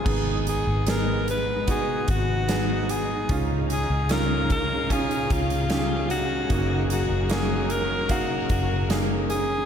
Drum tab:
CC |x---------------|----------------|----------------|
HH |--x-x-x-x-x-x-x-|x-x-x-x-xxxxx-x-|x-x-x-x-x-x-x-x-|
SD |----o-------o---|----o-------o---|----o-------o---|
BD |o-------o-o-----|o-----o-o-o-----|o-------o-o-----|